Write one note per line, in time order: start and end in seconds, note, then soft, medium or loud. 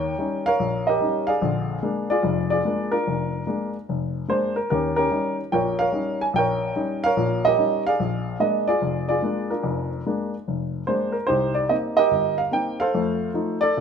0.00 0.13 D#2 medium
0.00 0.46 A#4 medium
0.00 0.46 C#5 medium
0.00 0.47 G5 medium
0.18 0.47 G3 soft
0.18 0.46 C#4 soft
0.18 0.47 D#4 medium
0.46 0.88 A#4 medium
0.46 1.24 C#5 medium
0.46 0.88 F5 loud
0.59 0.95 A#1 medium
0.87 1.39 G4 medium
0.87 1.39 A#4 medium
0.87 1.29 D#5 medium
1.01 1.29 G3 soft
1.01 1.29 C#4 soft
1.01 1.29 D#4 medium
1.27 2.06 G#4 medium
1.27 2.06 D5 medium
1.27 2.12 F5 medium
1.42 1.77 A#1 medium
1.42 1.77 D3 medium
1.83 2.11 G#3 medium
1.83 2.11 A#3 soft
1.83 2.11 D4 medium
2.10 2.51 F4 medium
2.10 2.51 G#4 medium
2.10 2.49 D5 medium
2.23 2.59 F1 medium
2.23 2.59 F2 medium
2.50 2.91 F4 medium
2.50 3.29 G#4 medium
2.50 2.93 D5 medium
2.65 2.93 G#3 soft
2.65 2.93 A#3 soft
2.65 2.91 D4 medium
2.92 3.46 D4 medium
2.92 3.70 F4 medium
2.92 3.70 A#4 medium
3.07 3.42 F1 medium
3.47 3.75 G#3 soft
3.47 3.75 A#3 soft
3.47 3.75 D4 medium
3.89 4.24 F1 medium
4.28 4.57 G#3 soft
4.28 4.57 A#3 soft
4.28 4.57 D4 medium
4.28 4.54 C5 medium
4.56 4.69 A#4 medium
4.70 5.06 D#2 medium
4.70 4.97 C#4 medium
4.70 4.97 G4 medium
4.70 4.95 A#4 medium
4.96 5.10 C#4 medium
4.96 5.76 G4 medium
4.96 5.35 A#4 medium
5.11 5.39 G3 soft
5.11 5.39 C#4 soft
5.11 5.40 D#4 soft
5.52 5.88 A#1 medium
5.52 5.88 A#2 medium
5.52 5.79 A#4 medium
5.52 5.79 C#5 medium
5.52 5.80 G5 medium
5.79 6.36 A#4 medium
5.79 6.37 C#5 medium
5.79 6.17 F5 loud
5.92 6.21 G3 soft
5.92 6.21 C#4 soft
5.92 6.21 D#4 medium
6.21 6.26 G#5 medium
6.34 6.70 A#1 medium
6.34 7.05 G5 loud
6.38 7.05 A#4 medium
6.38 7.04 C#5 medium
6.76 7.04 G3 soft
6.76 7.04 C#4 soft
6.76 7.04 D#4 medium
7.04 7.46 A#4 medium
7.04 7.82 C#5 medium
7.04 7.45 F5 loud
7.17 7.52 A#1 medium
7.17 7.52 A#2 medium
7.45 7.97 G4 medium
7.45 7.97 A#4 medium
7.45 7.82 D#5 loud
7.58 7.86 G3 soft
7.58 7.86 C#4 soft
7.58 7.86 D#4 soft
7.87 8.64 G#4 medium
7.87 8.65 D5 medium
7.87 8.37 F5 loud
8.00 8.35 A#1 medium
8.40 8.68 G#3 soft
8.40 8.68 A#3 soft
8.40 8.69 D4 medium
8.40 8.68 D#5 medium
8.68 9.08 F4 medium
8.68 9.09 G#4 medium
8.68 9.07 D5 medium
8.82 9.17 F1 medium
9.09 9.49 F4 medium
9.09 9.87 G#4 medium
9.09 9.51 D5 medium
9.22 9.50 G#3 soft
9.22 9.51 A#3 soft
9.22 9.50 D4 medium
9.50 10.06 D4 soft
9.50 10.28 F4 soft
9.50 10.28 A#4 medium
9.63 9.99 F1 medium
9.63 9.99 F2 medium
10.06 10.34 G#3 soft
10.06 10.34 A#3 soft
10.06 10.34 D4 medium
10.48 10.82 F1 medium
10.87 11.16 G#3 soft
10.87 11.16 A#3 soft
10.87 11.16 D4 medium
10.87 11.14 C5 medium
11.12 11.28 A#4 medium
11.27 11.64 C2 medium
11.27 11.69 D#4 medium
11.27 11.97 G4 medium
11.27 11.55 C5 medium
11.54 11.70 D5 medium
11.69 11.98 A#3 medium
11.69 11.98 C4 soft
11.69 11.98 D#4 medium
11.69 11.75 D#5 medium
11.97 12.76 G4 medium
11.97 12.76 A#4 medium
11.97 12.39 D#5 loud
12.11 12.46 G1 medium
12.38 12.51 F5 medium
12.51 12.80 A#3 soft
12.51 12.80 C4 soft
12.51 12.80 D#4 soft
12.51 12.77 G5 medium
12.80 13.58 A4 medium
12.80 13.58 C5 medium
12.80 13.31 F5 loud
12.94 13.29 F2 medium
12.94 13.29 A3 medium
13.34 13.62 F3 soft
13.34 13.63 A3 soft
13.34 13.63 D#4 medium
13.61 13.80 A4 medium
13.61 13.80 D5 loud
13.77 13.80 C2 medium
13.77 13.80 C3 medium